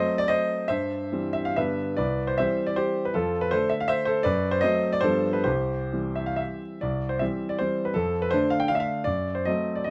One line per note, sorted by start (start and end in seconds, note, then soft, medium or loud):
0.00 0.65 F#3 medium
0.00 0.66 A3 soft
0.00 0.66 C4 medium
0.00 0.17 C5 medium
0.00 0.19 D#5 loud
0.18 0.29 D5 loud
0.28 0.66 C5 medium
0.28 0.68 D#5 loud
0.68 1.12 G2 medium
0.68 1.31 C5 medium
0.68 1.31 E5 medium
1.12 1.52 E3 soft
1.12 1.52 G3 soft
1.12 1.53 C4 soft
1.33 1.45 E5 medium
1.45 1.56 F5 medium
1.56 1.96 G2 medium
1.56 1.93 D3 soft
1.56 1.94 G3 soft
1.56 1.94 B3 soft
1.56 1.94 B4 medium
1.56 1.97 E5 medium
1.97 2.36 C2 medium
1.97 2.25 B4 medium
1.97 2.27 D5 medium
2.27 2.37 C5 medium
2.38 3.12 E3 soft
2.38 3.12 G3 soft
2.38 3.12 C4 soft
2.38 2.66 C5 medium
2.38 2.68 E5 medium
2.66 2.77 D5 medium
2.76 3.03 G4 medium
2.76 3.05 C5 medium
3.05 3.14 B4 medium
3.14 3.51 F2 medium
3.14 3.40 F4 medium
3.14 3.42 A4 medium
3.41 3.51 B4 medium
3.51 4.22 D3 soft
3.51 4.22 A3 soft
3.51 4.22 D4 medium
3.51 3.70 A4 medium
3.51 3.71 C5 medium
3.69 3.80 E5 medium
3.80 3.90 F5 medium
3.88 4.04 C5 medium
3.88 4.07 E5 loud
4.05 4.23 A4 medium
4.05 4.24 C5 medium
4.23 4.62 F#2 medium
4.23 4.50 B4 medium
4.23 4.52 D5 loud
4.51 4.61 C5 medium
4.61 4.99 F#3 medium
4.61 4.99 A3 soft
4.61 4.99 C4 medium
4.61 4.91 C5 medium
4.61 4.92 D#5 loud
4.93 5.03 D5 medium
5.01 5.44 G2 medium
5.01 5.41 F3 soft
5.01 5.41 G3 soft
5.01 5.42 B3 soft
5.01 5.31 A4 medium
5.01 5.33 C5 medium
5.33 5.45 B4 medium
5.44 5.91 C2 medium
5.44 6.58 G4 medium
5.44 6.61 C5 medium
5.93 6.79 E3 soft
5.93 6.79 G3 soft
5.93 6.79 C4 soft
6.16 6.28 E5 medium
6.26 6.39 F5 medium
6.36 6.81 E5 medium
6.81 7.20 C2 medium
6.81 7.10 D5 medium
7.09 7.20 C5 medium
7.19 7.56 E3 soft
7.19 7.56 G3 soft
7.19 7.56 C4 soft
7.19 7.50 E5 medium
7.49 7.59 D5 medium
7.59 7.92 E3 soft
7.59 7.92 G3 soft
7.59 7.93 C4 soft
7.59 7.86 C5 medium
7.85 7.95 B4 medium
7.94 8.32 F2 medium
7.94 8.22 A4 medium
8.22 8.32 B4 medium
8.31 8.67 D3 medium
8.31 8.67 A3 soft
8.31 8.67 D4 medium
8.31 8.51 C5 medium
8.50 8.61 F5 medium
8.60 8.70 G5 medium
8.68 9.02 D3 soft
8.68 9.03 A3 soft
8.68 9.03 D4 medium
8.68 8.76 F5 medium
8.75 8.82 E5 medium
8.80 9.05 F5 medium
9.04 9.46 F#2 medium
9.04 9.35 D5 medium
9.35 9.46 C5 medium
9.45 9.82 F#3 soft
9.45 9.83 A3 soft
9.45 9.83 C4 medium
9.45 9.76 D#5 medium
9.76 9.86 D5 medium
9.84 9.90 F#3 soft
9.84 9.90 A3 soft
9.84 9.90 C4 soft
9.84 9.90 D#5 medium